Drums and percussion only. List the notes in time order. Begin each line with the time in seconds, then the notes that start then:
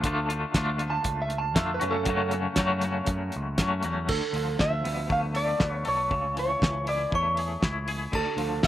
0.04 kick, closed hi-hat
0.30 closed hi-hat
0.54 kick, snare, closed hi-hat
0.79 closed hi-hat
1.04 kick, closed hi-hat
1.30 closed hi-hat
1.56 kick, snare, closed hi-hat
1.81 closed hi-hat
2.05 kick, closed hi-hat
2.31 closed hi-hat
2.56 kick, snare, closed hi-hat
2.82 closed hi-hat
3.06 kick, closed hi-hat
3.32 closed hi-hat
3.58 kick, snare, closed hi-hat
3.83 closed hi-hat
4.08 kick, crash
4.34 open hi-hat
4.59 kick, snare
4.85 open hi-hat
5.10 kick
5.35 open hi-hat
5.60 kick, snare
5.85 open hi-hat
6.11 kick
6.37 open hi-hat
6.62 kick, snare
6.87 open hi-hat
7.12 kick
7.37 open hi-hat
7.62 kick, snare
7.88 open hi-hat
8.13 kick, crash
8.38 open hi-hat
8.63 kick, snare